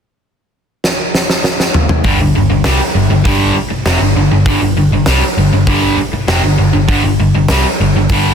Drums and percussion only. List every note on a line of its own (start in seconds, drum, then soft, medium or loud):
0.84 snare medium
1.15 snare medium
1.30 snare medium
1.44 snare medium
1.60 snare medium
1.74 mid tom medium
1.89 mid tom loud
2.04 kick medium
2.04 open hi-hat medium
2.64 snare loud
2.64 open hi-hat medium
3.25 kick loud
3.25 open hi-hat medium
3.86 snare loud
3.86 open hi-hat medium
4.46 kick loud
4.46 open hi-hat medium
5.06 snare loud
5.06 open hi-hat medium
5.67 kick loud
5.67 open hi-hat medium
6.28 snare medium
6.28 open hi-hat medium
6.89 kick medium
6.89 open hi-hat medium
7.48 snare loud
7.48 open hi-hat medium
8.09 kick loud
8.09 open hi-hat medium